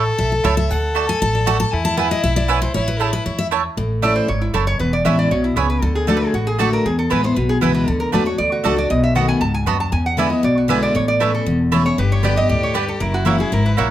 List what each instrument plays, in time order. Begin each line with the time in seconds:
Already playing: fiddle A4
0.18 upright bass B1, steel-string acoustic guitar E5
0.32 steel-string acoustic guitar A4
0.44 upright bass C#2, mandolin A3 E4 C#5 A5, steel-string acoustic guitar C#5
0.57 steel-string acoustic guitar E5
0.71 upright bass D2, fiddle A4, steel-string acoustic guitar F#5
0.95 mandolin A3 F#4 D5 A5
1.09 steel-string acoustic guitar G#5
1.22 upright bass A1, steel-string acoustic guitar A5
1.35 steel-string acoustic guitar D5
1.46 mandolin A3 F#4 D5 A5, steel-string acoustic guitar F#5
1.60 steel-string acoustic guitar A5
1.72 upright bass E2, fiddle E4, steel-string acoustic guitar G#5
1.85 steel-string acoustic guitar A5
1.97 mandolin B3 E4 B4 G#5, steel-string acoustic guitar F#5
2.11 steel-string acoustic guitar D#5
2.24 upright bass B1, steel-string acoustic guitar E5
2.36 steel-string acoustic guitar D5
2.48 mandolin B3 E4 B4 G#5, steel-string acoustic guitar C#5
2.62 steel-string acoustic guitar C5
2.74 upright bass A1, fiddle E4, steel-string acoustic guitar C#5
2.88 steel-string acoustic guitar B4
3.00 mandolin A3 E4 C#5 A5, steel-string acoustic guitar G#4
3.13 steel-string acoustic guitar B4
3.26 upright bass E2, steel-string acoustic guitar C#5
3.39 steel-string acoustic guitar E5
3.51 mandolin A3 E4 C#5 A5
3.77 upright bass A1, steel-string acoustic guitar A2
4.02 steel-string acoustic guitar E3 A3 C#4 E4, mandolin A3 E4 C#5 A5, resonator guitar played with a steel bar D5
4.16 resonator guitar played with a steel bar C5
4.28 upright bass G#1, steel-string acoustic guitar G#2, resonator guitar played with a steel bar C#5
4.41 resonator guitar played with a steel bar E4
4.54 upright bass F#1, steel-string acoustic guitar F#2, mandolin A3 E4 C#5 A5, resonator guitar played with a steel bar A4
4.67 resonator guitar played with a steel bar C#5
4.79 upright bass E1, steel-string acoustic guitar E2, resonator guitar played with a steel bar B4
4.93 resonator guitar played with a steel bar D5
5.05 upright bass A1, steel-string acoustic guitar E3 G#3 C#4 E4, mandolin B3 E4 C#5 G#5, resonator guitar played with a steel bar E5
5.19 resonator guitar played with a steel bar D5
5.31 upright bass B1, steel-string acoustic guitar B2, resonator guitar played with a steel bar C#5
5.44 resonator guitar played with a steel bar E4
5.56 upright bass C#2, steel-string acoustic guitar C#3, mandolin B3 E4 C#5 G#5, resonator guitar played with a steel bar G#4
5.70 resonator guitar played with a steel bar B4
5.82 upright bass D2, steel-string acoustic guitar D3, resonator guitar played with a steel bar A4
5.95 resonator guitar played with a steel bar G#4
6.07 steel-string acoustic guitar D3 A3 D4 F#4, mandolin A3 F#4 D5 A5, resonator guitar played with a steel bar A4
6.17 resonator guitar played with a steel bar B4
6.26 resonator guitar played with a steel bar G#4
6.34 upright bass A1, steel-string acoustic guitar A2, resonator guitar played with a steel bar F#4
6.47 resonator guitar played with a steel bar G#4
6.58 steel-string acoustic guitar D3 A3 D4 F#4, mandolin A3 F#4 D5 A5, resonator guitar played with a steel bar A4
6.73 resonator guitar played with a steel bar A#4
6.85 upright bass E2, steel-string acoustic guitar E2, resonator guitar played with a steel bar G#4
6.99 resonator guitar played with a steel bar A4
7.10 upright bass A1, steel-string acoustic guitar E3 G#3 B3 E4, mandolin B3 E4 B4 G#5, resonator guitar played with a steel bar B4
7.24 steel-string acoustic guitar B3 E4, resonator guitar played with a steel bar C5
7.36 upright bass B1, steel-string acoustic guitar B2, resonator guitar played with a steel bar B4
7.49 resonator guitar played with a steel bar G#4
7.61 upright bass C#2, steel-string acoustic guitar E3 G#3 B3 E4, mandolin B3 E4 B4 G#5
7.74 resonator guitar played with a steel bar B4
7.88 upright bass D2, steel-string acoustic guitar D3, resonator guitar played with a steel bar A4
8.00 resonator guitar played with a steel bar A#4
8.12 upright bass E2, steel-string acoustic guitar D3 A3 D4 F#4, mandolin A3 F#4 D5 A5, resonator guitar played with a steel bar B4
8.25 steel-string acoustic guitar D4 F#4, resonator guitar played with a steel bar C#5
8.38 upright bass D2, steel-string acoustic guitar A2, resonator guitar played with a steel bar D5
8.52 resonator guitar played with a steel bar F#4
8.64 upright bass C#2, steel-string acoustic guitar D3 A3 D4 F#4, mandolin A3 F#4 D5 A5, resonator guitar played with a steel bar A4
8.77 steel-string acoustic guitar D4 F#4, resonator guitar played with a steel bar D5
8.90 upright bass B1, steel-string acoustic guitar B2, resonator guitar played with a steel bar D#5
9.04 resonator guitar played with a steel bar E5
9.15 steel-string acoustic guitar D#3 A3 B3 F#4, mandolin B3 F#4 D#5 A5, resonator guitar played with a steel bar F#5
9.28 resonator guitar played with a steel bar G#5
9.41 upright bass C#2, steel-string acoustic guitar G#2, resonator guitar played with a steel bar A5
9.54 resonator guitar played with a steel bar G#5
9.66 upright bass D#2, steel-string acoustic guitar F#2, mandolin B3 F#4 D#5 A5, resonator guitar played with a steel bar B5
9.80 resonator guitar played with a steel bar A5
9.92 steel-string acoustic guitar E2, upright bass E2, resonator guitar played with a steel bar G#5
10.06 resonator guitar played with a steel bar F#5
10.17 steel-string acoustic guitar D3 G#3 B3 E4, mandolin B3 E4 D5 G#5, resonator guitar played with a steel bar E5
10.30 steel-string acoustic guitar B3 E4, resonator guitar played with a steel bar D#5
10.43 upright bass B1, steel-string acoustic guitar B2, resonator guitar played with a steel bar D5
10.58 resonator guitar played with a steel bar F#4
10.68 steel-string acoustic guitar D3 G#3 B3 E4, mandolin B3 E4 D5 G#5, resonator guitar played with a steel bar B4
10.83 resonator guitar played with a steel bar D5
10.95 upright bass A1, steel-string acoustic guitar A2, resonator guitar played with a steel bar C#5
11.08 resonator guitar played with a steel bar D5
11.20 steel-string acoustic guitar E3 A3 C#4 E4, mandolin A3 E4 C#5 A5, resonator guitar played with a steel bar B4
11.35 resonator guitar played with a steel bar A4
11.46 upright bass E1, steel-string acoustic guitar E2
11.72 steel-string acoustic guitar E3 A3 C#4 E4, mandolin A3 E4 C#5 A5
11.85 steel-string acoustic guitar C#4 E4, resonator guitar played with a steel bar C#5
11.98 upright bass G1, steel-string acoustic guitar G2, fiddle G4, resonator guitar played with a steel bar B4
12.12 resonator guitar played with a steel bar C#5
12.23 steel-string acoustic guitar D3 G3 B3 G4, mandolin B3 G4 D5 G5, resonator guitar played with a steel bar D5
12.36 steel-string acoustic guitar B3 G4, resonator guitar played with a steel bar D#5
12.49 upright bass D2, steel-string acoustic guitar A2, resonator guitar played with a steel bar D5
12.63 resonator guitar played with a steel bar C#5
12.74 steel-string acoustic guitar G2, mandolin B3 G4 D5 G5, resonator guitar played with a steel bar B4
12.88 resonator guitar played with a steel bar A4
13.00 upright bass F#1, steel-string acoustic guitar F#2, fiddle E4, resonator guitar played with a steel bar A#4
13.14 resonator guitar played with a steel bar F#4
13.25 steel-string acoustic guitar E3 A#3 C#4 F#4, mandolin A#3 E4 C#5 F#5, resonator guitar played with a steel bar E4
13.38 steel-string acoustic guitar C#4 F#4, resonator guitar played with a steel bar G#4
13.52 upright bass G#1, steel-string acoustic guitar G#2, resonator guitar played with a steel bar A#4
13.66 resonator guitar played with a steel bar B4
13.77 upright bass A#1, steel-string acoustic guitar A#2, mandolin A#3 E4 C#5 F#5, resonator guitar played with a steel bar C#5